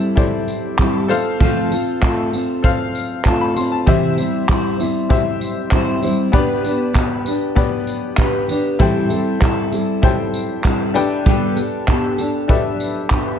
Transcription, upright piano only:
0, 0, Header, 1, 2, 480
1, 0, Start_track
1, 0, Tempo, 616016
1, 1097, Time_signature, 4, 2, 24, 8
1, 10434, End_track
2, 0, Start_track
2, 0, Title_t, "Upright piano"
2, 0, Program_c, 0, 0
2, 0, Control_c, 0, 64, 127
2, 0, Note_on_c, 0, 64, 79
2, 0, Note_on_c, 0, 67, 76
2, 0, Note_on_c, 0, 69, 78
2, 0, Note_on_c, 0, 72, 80
2, 0, Note_on_c, 0, 79, 84
2, 121, Note_off_c, 0, 64, 0
2, 121, Note_on_c, 0, 64, 77
2, 126, Note_off_c, 0, 67, 0
2, 126, Note_on_c, 0, 67, 64
2, 128, Note_off_c, 0, 69, 0
2, 128, Note_on_c, 0, 69, 66
2, 133, Note_off_c, 0, 72, 0
2, 133, Note_on_c, 0, 72, 69
2, 137, Note_on_c, 0, 74, 85
2, 833, Note_off_c, 0, 69, 0
2, 841, Note_off_c, 0, 72, 0
2, 845, Note_on_c, 0, 69, 88
2, 849, Note_off_c, 0, 64, 0
2, 852, Note_off_c, 0, 67, 0
2, 853, Note_on_c, 0, 72, 84
2, 857, Note_off_c, 0, 74, 0
2, 860, Note_on_c, 0, 77, 90
2, 869, Control_c, 0, 64, 0
2, 874, Note_off_c, 0, 79, 0
2, 990, Control_c, 0, 64, 127
2, 1682, Note_off_c, 0, 69, 0
2, 1686, Note_off_c, 0, 72, 0
2, 1689, Note_off_c, 0, 77, 0
2, 2045, Note_on_c, 0, 69, 75
2, 2053, Note_on_c, 0, 72, 65
2, 2062, Note_on_c, 0, 77, 88
2, 2534, Note_on_c, 0, 81, 62
2, 2650, Note_off_c, 0, 81, 0
2, 2656, Note_on_c, 0, 83, 73
2, 2771, Note_off_c, 0, 83, 0
2, 2777, Note_on_c, 0, 84, 69
2, 2882, Note_off_c, 0, 69, 0
2, 2886, Note_off_c, 0, 72, 0
2, 2891, Note_off_c, 0, 77, 0
2, 2891, Note_off_c, 0, 84, 0
2, 2896, Note_on_c, 0, 81, 64
2, 3011, Note_on_c, 0, 67, 78
2, 3021, Note_on_c, 0, 72, 70
2, 3027, Note_on_c, 0, 76, 97
2, 3028, Control_c, 0, 64, 0
2, 3125, Note_off_c, 0, 81, 0
2, 3143, Control_c, 0, 64, 127
2, 3845, Note_off_c, 0, 67, 0
2, 3850, Note_off_c, 0, 72, 0
2, 3853, Note_off_c, 0, 76, 0
2, 3969, Note_on_c, 0, 67, 76
2, 3974, Note_on_c, 0, 72, 74
2, 3983, Note_on_c, 0, 76, 86
2, 4804, Note_off_c, 0, 67, 0
2, 4806, Note_off_c, 0, 72, 0
2, 4811, Note_off_c, 0, 76, 0
2, 4923, Note_on_c, 0, 59, 81
2, 4929, Note_on_c, 0, 67, 77
2, 4933, Note_on_c, 0, 71, 80
2, 4939, Note_on_c, 0, 74, 96
2, 4948, Control_c, 0, 64, 0
2, 5105, Control_c, 0, 64, 127
2, 5761, Note_off_c, 0, 59, 0
2, 5764, Note_off_c, 0, 67, 0
2, 5765, Note_off_c, 0, 71, 0
2, 5768, Note_off_c, 0, 74, 0
2, 5886, Note_on_c, 0, 59, 79
2, 5890, Note_on_c, 0, 67, 72
2, 5895, Note_on_c, 0, 71, 74
2, 5900, Note_on_c, 0, 74, 84
2, 6721, Note_off_c, 0, 59, 0
2, 6723, Note_off_c, 0, 67, 0
2, 6726, Note_off_c, 0, 71, 0
2, 6729, Note_off_c, 0, 74, 0
2, 6849, Note_on_c, 0, 64, 93
2, 6853, Note_on_c, 0, 67, 76
2, 6858, Note_on_c, 0, 69, 82
2, 6861, Note_on_c, 0, 72, 84
2, 6864, Note_on_c, 0, 79, 89
2, 6866, Control_c, 0, 64, 0
2, 7017, Control_c, 0, 64, 127
2, 7682, Note_off_c, 0, 64, 0
2, 7685, Note_off_c, 0, 67, 0
2, 7687, Note_off_c, 0, 69, 0
2, 7688, Note_off_c, 0, 72, 0
2, 7690, Note_off_c, 0, 79, 0
2, 7808, Note_on_c, 0, 64, 76
2, 7810, Note_on_c, 0, 67, 73
2, 7815, Note_on_c, 0, 69, 71
2, 7820, Note_on_c, 0, 72, 81
2, 7823, Note_on_c, 0, 79, 80
2, 8515, Note_off_c, 0, 67, 0
2, 8520, Note_off_c, 0, 69, 0
2, 8524, Note_on_c, 0, 62, 92
2, 8527, Note_off_c, 0, 79, 0
2, 8527, Note_on_c, 0, 67, 87
2, 8531, Note_off_c, 0, 64, 0
2, 8532, Note_on_c, 0, 69, 83
2, 8534, Note_on_c, 0, 71, 84
2, 8537, Note_off_c, 0, 72, 0
2, 8539, Note_on_c, 0, 79, 100
2, 8545, Control_c, 0, 64, 0
2, 8664, Control_c, 0, 64, 127
2, 9359, Note_off_c, 0, 62, 0
2, 9361, Note_off_c, 0, 67, 0
2, 9363, Note_off_c, 0, 69, 0
2, 9364, Note_off_c, 0, 71, 0
2, 9367, Note_off_c, 0, 79, 0
2, 9723, Note_on_c, 0, 62, 73
2, 9727, Note_on_c, 0, 67, 75
2, 9731, Note_on_c, 0, 69, 72
2, 9735, Note_on_c, 0, 71, 69
2, 9741, Note_on_c, 0, 76, 79
2, 10434, Note_off_c, 0, 62, 0
2, 10434, Note_off_c, 0, 67, 0
2, 10434, Note_off_c, 0, 69, 0
2, 10434, Note_off_c, 0, 71, 0
2, 10434, Note_off_c, 0, 76, 0
2, 10434, End_track
0, 0, End_of_file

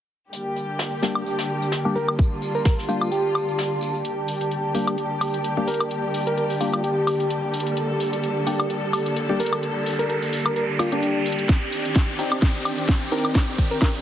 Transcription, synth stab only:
0, 0, Header, 1, 2, 480
1, 0, Start_track
1, 0, Key_signature, -2, "minor"
1, 0, Tempo, 465116
1, 338, Time_signature, 4, 2, 24, 8
1, 14463, End_track
2, 0, Start_track
2, 0, Title_t, "Synth stab"
2, 0, Program_c, 0, 62
2, 1059, Note_on_c, 0, 55, 75
2, 1059, Note_on_c, 0, 58, 69
2, 1059, Note_on_c, 0, 62, 69
2, 1059, Note_on_c, 0, 67, 84
2, 1282, Note_off_c, 0, 55, 0
2, 1282, Note_off_c, 0, 58, 0
2, 1282, Note_off_c, 0, 62, 0
2, 1282, Note_off_c, 0, 67, 0
2, 1910, Note_on_c, 0, 58, 82
2, 1910, Note_on_c, 0, 67, 94
2, 1911, Note_on_c, 0, 55, 87
2, 1911, Note_on_c, 0, 62, 79
2, 2038, Note_off_c, 0, 58, 0
2, 2038, Note_off_c, 0, 67, 0
2, 2039, Note_off_c, 0, 55, 0
2, 2039, Note_off_c, 0, 62, 0
2, 2978, Note_on_c, 0, 55, 77
2, 2978, Note_on_c, 0, 58, 72
2, 2978, Note_on_c, 0, 62, 70
2, 2978, Note_on_c, 0, 67, 87
2, 3201, Note_off_c, 0, 55, 0
2, 3201, Note_off_c, 0, 62, 0
2, 3202, Note_off_c, 0, 58, 0
2, 3202, Note_off_c, 0, 67, 0
2, 4898, Note_on_c, 0, 55, 80
2, 4898, Note_on_c, 0, 58, 73
2, 4898, Note_on_c, 0, 62, 72
2, 4898, Note_on_c, 0, 67, 87
2, 5122, Note_off_c, 0, 55, 0
2, 5122, Note_off_c, 0, 58, 0
2, 5122, Note_off_c, 0, 62, 0
2, 5122, Note_off_c, 0, 67, 0
2, 5751, Note_on_c, 0, 55, 92
2, 5751, Note_on_c, 0, 58, 83
2, 5751, Note_on_c, 0, 62, 80
2, 5751, Note_on_c, 0, 67, 100
2, 5878, Note_off_c, 0, 55, 0
2, 5878, Note_off_c, 0, 62, 0
2, 5879, Note_off_c, 0, 58, 0
2, 5879, Note_off_c, 0, 67, 0
2, 6817, Note_on_c, 0, 67, 87
2, 6818, Note_on_c, 0, 55, 80
2, 6818, Note_on_c, 0, 58, 73
2, 6818, Note_on_c, 0, 62, 74
2, 7041, Note_off_c, 0, 55, 0
2, 7041, Note_off_c, 0, 58, 0
2, 7041, Note_off_c, 0, 62, 0
2, 7041, Note_off_c, 0, 67, 0
2, 8738, Note_on_c, 0, 55, 80
2, 8738, Note_on_c, 0, 58, 70
2, 8738, Note_on_c, 0, 62, 75
2, 8738, Note_on_c, 0, 67, 84
2, 8961, Note_off_c, 0, 55, 0
2, 8961, Note_off_c, 0, 67, 0
2, 8962, Note_off_c, 0, 58, 0
2, 8962, Note_off_c, 0, 62, 0
2, 9591, Note_on_c, 0, 55, 90
2, 9591, Note_on_c, 0, 58, 82
2, 9591, Note_on_c, 0, 62, 86
2, 9591, Note_on_c, 0, 67, 104
2, 9718, Note_off_c, 0, 58, 0
2, 9718, Note_off_c, 0, 62, 0
2, 9719, Note_off_c, 0, 55, 0
2, 9719, Note_off_c, 0, 67, 0
2, 11138, Note_on_c, 0, 55, 90
2, 11138, Note_on_c, 0, 58, 83
2, 11138, Note_on_c, 0, 62, 80
2, 11138, Note_on_c, 0, 67, 101
2, 11251, Note_off_c, 0, 55, 0
2, 11251, Note_off_c, 0, 58, 0
2, 11251, Note_off_c, 0, 62, 0
2, 11251, Note_off_c, 0, 67, 0
2, 11270, Note_on_c, 0, 67, 105
2, 11271, Note_on_c, 0, 55, 97
2, 11271, Note_on_c, 0, 58, 87
2, 11271, Note_on_c, 0, 62, 88
2, 11845, Note_off_c, 0, 67, 0
2, 11846, Note_off_c, 0, 55, 0
2, 11846, Note_off_c, 0, 58, 0
2, 11846, Note_off_c, 0, 62, 0
2, 12578, Note_on_c, 0, 60, 73
2, 12578, Note_on_c, 0, 62, 68
2, 12578, Note_on_c, 0, 63, 68
2, 12578, Note_on_c, 0, 67, 82
2, 12801, Note_off_c, 0, 60, 0
2, 12801, Note_off_c, 0, 62, 0
2, 12801, Note_off_c, 0, 63, 0
2, 12801, Note_off_c, 0, 67, 0
2, 13539, Note_on_c, 0, 60, 81
2, 13539, Note_on_c, 0, 62, 72
2, 13539, Note_on_c, 0, 63, 70
2, 13539, Note_on_c, 0, 67, 87
2, 13761, Note_off_c, 0, 60, 0
2, 13761, Note_off_c, 0, 62, 0
2, 13761, Note_off_c, 0, 63, 0
2, 13761, Note_off_c, 0, 67, 0
2, 14463, End_track
0, 0, End_of_file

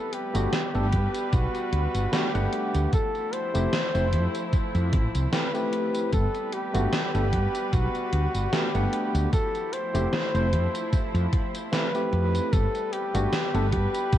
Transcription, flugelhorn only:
0, 0, Header, 1, 2, 480
1, 0, Start_track
1, 0, Key_signature, 1, "major"
1, 0, Tempo, 800000
1, 1757, Time_signature, 4, 2, 24, 8
1, 8508, End_track
2, 0, Start_track
2, 0, Title_t, "Flugelhorn"
2, 0, Program_c, 0, 56
2, 0, Note_on_c, 0, 69, 105
2, 79, Note_on_c, 0, 67, 103
2, 88, Note_off_c, 0, 69, 0
2, 802, Note_on_c, 0, 66, 104
2, 812, Note_off_c, 0, 67, 0
2, 1282, Note_on_c, 0, 67, 103
2, 1291, Note_off_c, 0, 66, 0
2, 1757, Note_off_c, 0, 67, 0
2, 1760, Note_on_c, 0, 69, 116
2, 1999, Note_on_c, 0, 72, 121
2, 2008, Note_off_c, 0, 69, 0
2, 2958, Note_off_c, 0, 72, 0
2, 3199, Note_on_c, 0, 71, 104
2, 3654, Note_off_c, 0, 71, 0
2, 3678, Note_on_c, 0, 69, 102
2, 3919, Note_on_c, 0, 67, 101
2, 3928, Note_off_c, 0, 69, 0
2, 4638, Note_on_c, 0, 66, 108
2, 4647, Note_off_c, 0, 67, 0
2, 5116, Note_on_c, 0, 67, 103
2, 5125, Note_off_c, 0, 66, 0
2, 5593, Note_off_c, 0, 67, 0
2, 5597, Note_on_c, 0, 69, 115
2, 5836, Note_on_c, 0, 72, 126
2, 5845, Note_off_c, 0, 69, 0
2, 6796, Note_off_c, 0, 72, 0
2, 7035, Note_on_c, 0, 71, 123
2, 7517, Note_on_c, 0, 69, 119
2, 7526, Note_off_c, 0, 71, 0
2, 7754, Note_on_c, 0, 67, 107
2, 7763, Note_off_c, 0, 69, 0
2, 8231, Note_off_c, 0, 67, 0
2, 8235, Note_on_c, 0, 67, 112
2, 8508, Note_off_c, 0, 67, 0
2, 8508, End_track
0, 0, End_of_file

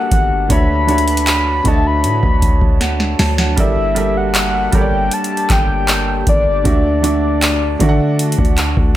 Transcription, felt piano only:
0, 0, Header, 1, 2, 480
1, 0, Start_track
1, 0, Key_signature, 2, "major"
1, 0, Tempo, 769231
1, 313, Time_signature, 4, 2, 24, 8
1, 5594, End_track
2, 0, Start_track
2, 0, Title_t, "Felt piano"
2, 0, Program_c, 0, 0
2, 0, Control_c, 0, 64, 127
2, 0, Note_on_c, 0, 55, 78
2, 0, Note_on_c, 0, 67, 70
2, 0, Note_on_c, 0, 69, 74
2, 0, Note_on_c, 0, 70, 72
2, 0, Note_on_c, 0, 74, 86
2, 303, Note_on_c, 0, 50, 78
2, 308, Note_on_c, 0, 62, 70
2, 313, Note_on_c, 0, 66, 70
2, 318, Note_on_c, 0, 73, 75
2, 321, Note_off_c, 0, 69, 0
2, 321, Control_c, 0, 64, 0
2, 322, Note_on_c, 0, 76, 89
2, 323, Note_off_c, 0, 55, 0
2, 324, Note_off_c, 0, 70, 0
2, 325, Note_off_c, 0, 67, 0
2, 326, Note_off_c, 0, 74, 0
2, 423, Control_c, 0, 64, 127
2, 524, Note_off_c, 0, 50, 0
2, 527, Note_off_c, 0, 62, 0
2, 529, Note_off_c, 0, 66, 0
2, 532, Note_off_c, 0, 73, 0
2, 534, Note_off_c, 0, 76, 0
2, 544, Note_on_c, 0, 50, 77
2, 548, Note_on_c, 0, 62, 74
2, 553, Note_on_c, 0, 66, 69
2, 558, Note_on_c, 0, 73, 69
2, 562, Note_on_c, 0, 76, 85
2, 981, Note_off_c, 0, 50, 0
2, 983, Note_off_c, 0, 62, 0
2, 985, Note_off_c, 0, 66, 0
2, 988, Note_off_c, 0, 73, 0
2, 990, Note_off_c, 0, 76, 0
2, 1023, Note_on_c, 0, 50, 76
2, 1028, Note_on_c, 0, 62, 69
2, 1033, Note_on_c, 0, 66, 70
2, 1038, Note_on_c, 0, 73, 69
2, 1042, Note_on_c, 0, 75, 68
2, 1078, Note_off_c, 0, 75, 0
2, 1083, Note_on_c, 0, 76, 82
2, 1752, Note_on_c, 0, 78, 67
2, 1893, Note_off_c, 0, 50, 0
2, 1895, Note_off_c, 0, 62, 0
2, 1898, Note_off_c, 0, 66, 0
2, 1900, Note_off_c, 0, 73, 0
2, 1923, Note_off_c, 0, 76, 0
2, 1980, Note_off_c, 0, 78, 0
2, 1993, Note_on_c, 0, 81, 73
2, 2107, Note_off_c, 0, 81, 0
2, 2114, Note_on_c, 0, 78, 65
2, 2223, Note_on_c, 0, 55, 76
2, 2229, Note_on_c, 0, 67, 68
2, 2233, Note_on_c, 0, 69, 67
2, 2238, Note_on_c, 0, 70, 71
2, 2241, Control_c, 0, 64, 0
2, 2242, Note_on_c, 0, 74, 84
2, 2341, Note_off_c, 0, 78, 0
2, 2362, Control_c, 0, 64, 127
2, 2444, Note_off_c, 0, 55, 0
2, 2447, Note_off_c, 0, 67, 0
2, 2449, Note_off_c, 0, 69, 0
2, 2451, Note_off_c, 0, 70, 0
2, 2454, Note_off_c, 0, 74, 0
2, 2462, Note_on_c, 0, 55, 78
2, 2467, Note_on_c, 0, 67, 68
2, 2472, Note_on_c, 0, 69, 70
2, 2477, Note_on_c, 0, 70, 69
2, 2481, Note_on_c, 0, 76, 86
2, 2900, Note_off_c, 0, 55, 0
2, 2902, Note_off_c, 0, 67, 0
2, 2905, Note_off_c, 0, 69, 0
2, 2907, Note_off_c, 0, 70, 0
2, 2909, Note_off_c, 0, 76, 0
2, 2943, Note_on_c, 0, 55, 75
2, 2948, Note_on_c, 0, 67, 73
2, 2952, Note_on_c, 0, 69, 71
2, 2957, Note_on_c, 0, 70, 66
2, 2961, Note_on_c, 0, 73, 67
2, 2998, Note_off_c, 0, 73, 0
2, 3003, Note_on_c, 0, 74, 86
2, 3813, Note_off_c, 0, 55, 0
2, 3815, Note_off_c, 0, 67, 0
2, 3817, Note_off_c, 0, 69, 0
2, 3820, Note_off_c, 0, 70, 0
2, 3843, Note_off_c, 0, 74, 0
2, 4142, Note_on_c, 0, 50, 76
2, 4147, Note_on_c, 0, 62, 69
2, 4152, Note_on_c, 0, 66, 74
2, 4157, Note_on_c, 0, 74, 73
2, 4161, Control_c, 0, 64, 0
2, 4161, Note_on_c, 0, 76, 90
2, 4256, Control_c, 0, 64, 127
2, 4364, Note_off_c, 0, 50, 0
2, 4366, Note_off_c, 0, 62, 0
2, 4368, Note_off_c, 0, 66, 0
2, 4371, Note_off_c, 0, 74, 0
2, 4373, Note_off_c, 0, 76, 0
2, 4382, Note_on_c, 0, 50, 76
2, 4387, Note_on_c, 0, 62, 73
2, 4392, Note_on_c, 0, 66, 68
2, 4397, Note_on_c, 0, 74, 74
2, 4402, Note_on_c, 0, 76, 86
2, 4820, Note_off_c, 0, 50, 0
2, 4822, Note_off_c, 0, 62, 0
2, 4825, Note_off_c, 0, 66, 0
2, 4827, Note_off_c, 0, 74, 0
2, 4830, Note_off_c, 0, 76, 0
2, 4863, Note_on_c, 0, 50, 88
2, 4867, Note_on_c, 0, 62, 85
2, 4873, Note_on_c, 0, 66, 87
2, 4877, Note_on_c, 0, 74, 80
2, 4882, Note_on_c, 0, 76, 77
2, 4918, Note_off_c, 0, 76, 0
2, 4922, Note_on_c, 0, 78, 108
2, 5594, Note_off_c, 0, 50, 0
2, 5594, Note_off_c, 0, 62, 0
2, 5594, Note_off_c, 0, 66, 0
2, 5594, Note_off_c, 0, 74, 0
2, 5594, Note_off_c, 0, 78, 0
2, 5594, End_track
0, 0, End_of_file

